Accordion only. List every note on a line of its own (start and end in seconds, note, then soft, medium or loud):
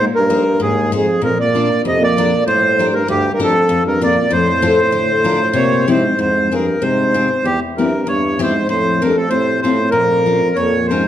0.15 0.61 A#4 medium
0.62 0.92 G#4 medium
0.97 1.22 G#4 medium
1.24 1.38 A#4 medium
1.40 1.82 D5 medium
1.88 2.03 D#5 medium
2.04 2.44 D5 medium
2.47 2.94 C5 loud
2.94 3.08 A#4 medium
3.10 3.32 G4 medium
3.34 3.40 A#4 medium
3.43 3.83 A4 loud
3.87 4.01 A#4 medium
4.03 4.32 D5 medium
4.32 5.86 C5 loud
5.55 5.90 C#5 medium
5.92 6.19 C5 medium
6.21 6.54 C5 medium
6.53 6.83 A#4 medium
6.82 7.46 C5 medium
7.45 7.60 G4 loud
7.78 8.07 A#4 medium
8.08 8.41 C#5 medium
8.43 8.68 C5 medium
8.69 9.03 C5 loud
9.02 9.16 A#4 medium
9.16 9.29 A4 medium
9.30 9.60 C5 medium
9.62 9.90 C5 medium
9.91 10.56 A#4 loud
10.56 10.87 C#5 medium
10.87 11.08 C5 medium